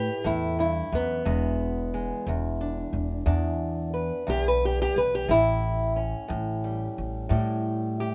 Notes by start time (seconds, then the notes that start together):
Already playing: A2 E4 G4
0.24 E2 A2 E4
0.59 G2 E4
0.92 E2 F#2 B3
1.25 E1 E2 G#3
1.94 G#3
2.26 E1 E2
2.61 D4
2.93 E1
3.26 E2 D4
3.94 B4
4.27 B1 E2 G4
4.48 B4
4.65 G4
4.82 G4
4.96 B1 B4
5.15 G4
5.28 A1 A2 E4
5.96 C#4
6.28 A1 A2
6.64 G3
6.98 A1
7.29 A2 G3
8.00 G4